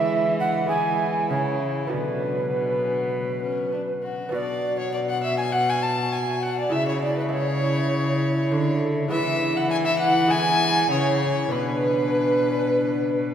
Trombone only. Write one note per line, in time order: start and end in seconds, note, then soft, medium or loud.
0.00 0.68 G#3 medium
0.71 1.61 G#3 medium
1.90 3.99 F#3 medium
4.32 5.49 F#4 medium
5.54 6.75 F#4 medium
6.73 7.32 E4 medium
7.33 9.08 E4 medium
9.11 10.28 E4 medium
10.32 11.22 E4 medium
11.52 13.34 D4 medium